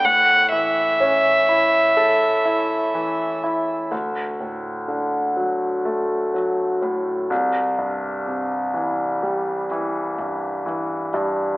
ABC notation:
X:1
M:4/4
L:1/8
Q:1/4=62
K:Clyd
V:1 name="Violin"
f e6 z | z8 | z8 |]
V:2 name="Grand piano" clef=bass
A,, E, ^C E A E E, E | D,, A,, D, F, A, F, A,, C,, | G,, C, E, G, E, G,, E, G,, |]